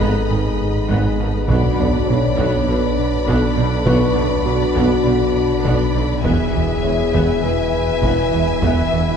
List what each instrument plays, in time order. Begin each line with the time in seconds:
Already playing: sub bass G#1, trombone section B2 D#4, analog synth pad G#3 B3 D#4 B4, violin section D#5 B5
0.00 double bass section G#1, tuba G#1, analog synth bass G#2, cello section G#2, viola section B3, french horn section A4, taiko
0.30 double bass section G#1, tuba G#1, cello section G#2, analog synth bass G#2, viola section D#3, french horn section G#4
0.61 analog synth bass G#2
0.89 double bass section G#1, tuba G#1, cello section G#2, analog synth bass G#2, viola section B3, french horn section G#4, taiko
1.19 double bass section G#1, tuba G#1, analog synth bass G#2, cello section G#2, viola section D#3, french horn section A4
1.36 french horn section B4
1.48 double bass section B1, tuba B1, sub bass B1, trombone section B2 D4, cello section B2, analog synth bass B2, analog synth pad F#3 B3 D4 B4, viola section B3, french horn section F#4, violin section D5 B5, taiko
1.77 double bass section B1, tuba B1, cello section B2, viola section D3, analog synth bass B3, felt piano D5, taiko low
2.07 double bass section B1, tuba B1, cello section B2, analog synth bass B2, viola section F#3, french horn section C#5
2.37 double bass section B1, tuba B1, cello section B2, analog synth bass B2, viola section B3, taiko
2.68 double bass section B1, tuba B1, cello section B2, analog synth bass B2, viola section D3, french horn section B4
2.99 analog synth bass B2
3.27 double bass section B1, tuba B1, cello section B2, analog synth bass B2, viola section B3, french horn section A4, taiko
3.57 double bass section B1, tuba B1, cello section B2, analog synth bass B2, viola section D3
3.85 double bass section B1, tuba B1, cello section B2, analog synth bass B2, viola section B3, french horn section B4, felt piano C#6, taiko
4.14 tuba B1, double bass section B1, cello section B2, viola section D3, analog synth bass B3, taiko low
4.45 double bass section B1, tuba B1, cello section B2, analog synth bass B2, viola section F#3, french horn section F#4
4.74 double bass section B1, tuba B1, cello section B2, analog synth bass B2, viola section B3, taiko
5.04 double bass section B1, tuba B1, cello section B2, analog synth bass B2, viola section D3
5.36 analog synth bass B2
5.64 double bass section B1, tuba B1, cello section B2, analog synth bass B2, viola section B3, taiko
5.94 double bass section B1, tuba B1, cello section B2, analog synth bass B2, viola section D3
6.23 sub bass E1, double bass section E1, tuba E1, cello section E2, analog synth bass E2, trombone section B2 E4, analog synth pad E3 B3 E4 B4, viola section B3, french horn section G#4, violin section E5 G#5, taiko
6.53 double bass section E1, tuba E1, cello section E2, viola section E3, analog synth bass E3, taiko low
6.83 tuba E1, double bass section E1, cello section E2, analog synth bass E2, viola section G#3, felt piano C#5
7.13 double bass section E1, tuba E1, cello section E2, analog synth bass E2, viola section B3, taiko
7.42 tuba E1, double bass section E1, cello section E2, analog synth bass E2, viola section E3, french horn section B4
7.74 analog synth bass E2
8.03 double bass section E1, tuba E1, cello section E2, analog synth bass E2, viola section B3, taiko
8.32 tuba E1, double bass section E1, cello section E2, analog synth bass E2, viola section E3
8.61 tuba E1, double bass section E1, cello section E2, analog synth bass E2, viola section B3, french horn section E5, taiko
8.92 tuba E1, double bass section E1, cello section E2, viola section E3, analog synth bass E3